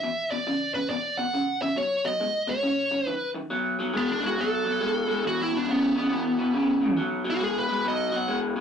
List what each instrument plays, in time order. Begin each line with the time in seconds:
Already playing: lead electric guitar E5
0.04 clean electric guitar E2 B2
0.31 clean electric guitar E2 B2, lead electric guitar D5
0.47 clean electric guitar E2 C#3
0.74 clean electric guitar E2 C#3, lead electric guitar B4
0.90 clean electric guitar E2 B2, lead electric guitar D5
1.18 clean electric guitar E2 B2, lead electric guitar F#5
1.34 clean electric guitar E2 C#3
1.62 clean electric guitar E2 C#3, lead electric guitar E5
1.76 clean electric guitar B2 F#3, lead electric guitar C#5
2.05 clean electric guitar B2 F#3, lead electric guitar D#5
2.20 clean electric guitar B2 G#3
2.47 clean electric guitar B2 G#3, lead electric guitar C#5
2.63 clean electric guitar F#2 C#3
2.91 clean electric guitar F#2 C#3
3.07 clean electric guitar F#2 D#3, lead electric guitar B4
3.34 clean electric guitar F#2 D#3
3.50 clean electric guitar B2 F#3
3.79 clean electric guitar B2 F#3
3.93 clean electric guitar B2 G#3
3.97 lead electric guitar B3
4.12 lead electric guitar D4
4.21 clean electric guitar B2 G#3
4.27 lead electric guitar F#4
4.37 clean electric guitar B2 F#3, lead electric guitar A4
4.65 clean electric guitar B2 F#3
4.81 clean electric guitar B2 G#3
5.08 clean electric guitar B2 G#3
5.24 clean electric guitar E2 B2, lead electric guitar F#4
5.42 lead electric guitar E4
5.52 clean electric guitar E2 B2
5.57 lead electric guitar D4
5.67 clean electric guitar E2 C#3
5.71 lead electric guitar B3
5.95 clean electric guitar E2 C#3
6.10 clean electric guitar E2 B2
6.38 clean electric guitar E2 B2
6.54 clean electric guitar E2 C#3
6.82 clean electric guitar E2 C#3
6.97 clean electric guitar B2 F#3
7.24 clean electric guitar B2 F#3
7.30 lead electric guitar F#4
7.40 clean electric guitar B2 G#3, lead electric guitar G#4
7.58 lead electric guitar B4
7.68 clean electric guitar B2 G#3
7.85 clean electric guitar B2 F#3, lead electric guitar D#5
8.12 clean electric guitar B2 F#3
8.17 lead electric guitar F#5
8.28 clean electric guitar B2 G#3
8.56 clean electric guitar B2 G#3